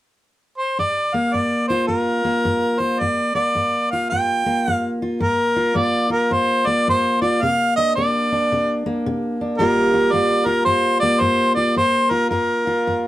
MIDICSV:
0, 0, Header, 1, 3, 480
1, 0, Start_track
1, 0, Key_signature, -2, "minor"
1, 0, Tempo, 552995
1, 686, Time_signature, 4, 2, 24, 8
1, 4523, Tempo, 546946
1, 11425, End_track
2, 0, Start_track
2, 0, Title_t, "Harmonica"
2, 0, Program_c, 0, 22
2, 505, Note_on_c, 0, 72, 67
2, 673, Note_off_c, 0, 72, 0
2, 687, Note_on_c, 0, 74, 83
2, 993, Note_on_c, 0, 77, 83
2, 1006, Note_off_c, 0, 74, 0
2, 1163, Note_on_c, 0, 74, 72
2, 1176, Note_off_c, 0, 77, 0
2, 1458, Note_off_c, 0, 74, 0
2, 1463, Note_on_c, 0, 72, 72
2, 1624, Note_off_c, 0, 72, 0
2, 1630, Note_on_c, 0, 70, 76
2, 2429, Note_on_c, 0, 72, 73
2, 2442, Note_off_c, 0, 70, 0
2, 2601, Note_on_c, 0, 74, 82
2, 2614, Note_off_c, 0, 72, 0
2, 2904, Note_off_c, 0, 74, 0
2, 2909, Note_on_c, 0, 74, 85
2, 3355, Note_off_c, 0, 74, 0
2, 3395, Note_on_c, 0, 77, 77
2, 3551, Note_off_c, 0, 77, 0
2, 3557, Note_on_c, 0, 79, 84
2, 4103, Note_off_c, 0, 79, 0
2, 4103, Note_on_c, 0, 77, 84
2, 4306, Note_off_c, 0, 77, 0
2, 4528, Note_on_c, 0, 70, 87
2, 5012, Note_on_c, 0, 74, 79
2, 5025, Note_off_c, 0, 70, 0
2, 5311, Note_off_c, 0, 74, 0
2, 5317, Note_on_c, 0, 70, 76
2, 5507, Note_on_c, 0, 72, 81
2, 5520, Note_off_c, 0, 70, 0
2, 5803, Note_on_c, 0, 74, 93
2, 5816, Note_off_c, 0, 72, 0
2, 5976, Note_off_c, 0, 74, 0
2, 6003, Note_on_c, 0, 72, 88
2, 6267, Note_off_c, 0, 72, 0
2, 6284, Note_on_c, 0, 74, 94
2, 6466, Note_on_c, 0, 77, 106
2, 6479, Note_off_c, 0, 74, 0
2, 6755, Note_off_c, 0, 77, 0
2, 6760, Note_on_c, 0, 75, 99
2, 6922, Note_off_c, 0, 75, 0
2, 6931, Note_on_c, 0, 74, 81
2, 7675, Note_off_c, 0, 74, 0
2, 8358, Note_on_c, 0, 70, 90
2, 8832, Note_on_c, 0, 74, 93
2, 8845, Note_off_c, 0, 70, 0
2, 9131, Note_on_c, 0, 70, 84
2, 9144, Note_off_c, 0, 74, 0
2, 9291, Note_off_c, 0, 70, 0
2, 9297, Note_on_c, 0, 72, 92
2, 9590, Note_off_c, 0, 72, 0
2, 9605, Note_on_c, 0, 74, 107
2, 9784, Note_on_c, 0, 72, 93
2, 9797, Note_off_c, 0, 74, 0
2, 10082, Note_off_c, 0, 72, 0
2, 10087, Note_on_c, 0, 74, 87
2, 10263, Note_off_c, 0, 74, 0
2, 10284, Note_on_c, 0, 72, 91
2, 10571, Note_on_c, 0, 70, 84
2, 10585, Note_off_c, 0, 72, 0
2, 10735, Note_off_c, 0, 70, 0
2, 10741, Note_on_c, 0, 70, 65
2, 11425, Note_off_c, 0, 70, 0
2, 11425, End_track
3, 0, Start_track
3, 0, Title_t, "Steel-string acoustic guitar"
3, 0, Program_c, 1, 25
3, 683, Note_on_c, 1, 43, 70
3, 990, Note_on_c, 1, 58, 50
3, 1130, Note_off_c, 1, 43, 0
3, 1164, Note_on_c, 1, 43, 58
3, 1476, Note_on_c, 1, 65, 59
3, 1611, Note_off_c, 1, 43, 0
3, 1635, Note_on_c, 1, 43, 65
3, 1946, Note_off_c, 1, 58, 0
3, 1949, Note_on_c, 1, 58, 56
3, 2087, Note_off_c, 1, 43, 0
3, 2126, Note_on_c, 1, 43, 71
3, 2426, Note_off_c, 1, 65, 0
3, 2430, Note_on_c, 1, 65, 45
3, 2572, Note_off_c, 1, 43, 0
3, 2614, Note_on_c, 1, 43, 76
3, 2640, Note_off_c, 1, 65, 0
3, 2897, Note_off_c, 1, 58, 0
3, 2907, Note_on_c, 1, 58, 51
3, 3056, Note_off_c, 1, 43, 0
3, 3083, Note_on_c, 1, 43, 53
3, 3410, Note_on_c, 1, 65, 52
3, 3529, Note_off_c, 1, 43, 0
3, 3576, Note_on_c, 1, 43, 66
3, 3862, Note_off_c, 1, 58, 0
3, 3872, Note_on_c, 1, 58, 55
3, 4015, Note_off_c, 1, 43, 0
3, 4061, Note_on_c, 1, 43, 73
3, 4348, Note_off_c, 1, 65, 0
3, 4359, Note_on_c, 1, 65, 47
3, 4496, Note_off_c, 1, 43, 0
3, 4509, Note_off_c, 1, 65, 0
3, 4517, Note_on_c, 1, 43, 79
3, 4832, Note_on_c, 1, 65, 55
3, 4967, Note_off_c, 1, 43, 0
3, 4990, Note_off_c, 1, 58, 0
3, 4995, Note_on_c, 1, 43, 63
3, 5000, Note_on_c, 1, 58, 54
3, 5291, Note_off_c, 1, 65, 0
3, 5302, Note_on_c, 1, 65, 56
3, 5446, Note_off_c, 1, 43, 0
3, 5486, Note_on_c, 1, 43, 76
3, 5801, Note_off_c, 1, 58, 0
3, 5804, Note_on_c, 1, 58, 60
3, 5932, Note_off_c, 1, 43, 0
3, 5986, Note_on_c, 1, 43, 73
3, 6267, Note_off_c, 1, 65, 0
3, 6285, Note_on_c, 1, 65, 55
3, 6422, Note_off_c, 1, 43, 0
3, 6435, Note_off_c, 1, 65, 0
3, 6468, Note_on_c, 1, 48, 77
3, 6774, Note_on_c, 1, 62, 59
3, 6903, Note_off_c, 1, 48, 0
3, 6945, Note_on_c, 1, 48, 57
3, 6948, Note_off_c, 1, 58, 0
3, 6952, Note_on_c, 1, 58, 47
3, 7251, Note_off_c, 1, 62, 0
3, 7254, Note_on_c, 1, 62, 58
3, 7381, Note_off_c, 1, 48, 0
3, 7428, Note_on_c, 1, 48, 70
3, 7722, Note_off_c, 1, 58, 0
3, 7726, Note_on_c, 1, 58, 59
3, 7862, Note_off_c, 1, 48, 0
3, 7904, Note_on_c, 1, 48, 74
3, 8205, Note_off_c, 1, 62, 0
3, 8209, Note_on_c, 1, 62, 46
3, 8340, Note_off_c, 1, 48, 0
3, 8366, Note_on_c, 1, 43, 83
3, 8375, Note_on_c, 1, 55, 66
3, 8378, Note_off_c, 1, 58, 0
3, 8382, Note_on_c, 1, 58, 62
3, 8385, Note_off_c, 1, 62, 0
3, 8388, Note_on_c, 1, 65, 66
3, 8669, Note_off_c, 1, 65, 0
3, 8672, Note_on_c, 1, 65, 60
3, 8811, Note_off_c, 1, 43, 0
3, 8838, Note_on_c, 1, 43, 59
3, 8841, Note_off_c, 1, 58, 0
3, 8845, Note_on_c, 1, 58, 56
3, 9128, Note_off_c, 1, 65, 0
3, 9132, Note_on_c, 1, 65, 62
3, 9287, Note_off_c, 1, 43, 0
3, 9305, Note_on_c, 1, 43, 76
3, 9623, Note_off_c, 1, 58, 0
3, 9626, Note_on_c, 1, 58, 60
3, 9760, Note_off_c, 1, 43, 0
3, 9788, Note_on_c, 1, 43, 76
3, 10091, Note_off_c, 1, 65, 0
3, 10102, Note_on_c, 1, 65, 54
3, 10241, Note_off_c, 1, 43, 0
3, 10262, Note_off_c, 1, 65, 0
3, 10274, Note_on_c, 1, 43, 78
3, 10577, Note_on_c, 1, 65, 57
3, 10603, Note_off_c, 1, 55, 0
3, 10724, Note_off_c, 1, 43, 0
3, 10751, Note_on_c, 1, 43, 65
3, 10756, Note_off_c, 1, 58, 0
3, 10759, Note_on_c, 1, 58, 56
3, 11059, Note_off_c, 1, 65, 0
3, 11069, Note_on_c, 1, 65, 62
3, 11203, Note_off_c, 1, 43, 0
3, 11247, Note_on_c, 1, 43, 67
3, 11425, Note_off_c, 1, 43, 0
3, 11425, Note_off_c, 1, 58, 0
3, 11425, Note_off_c, 1, 65, 0
3, 11425, End_track
0, 0, End_of_file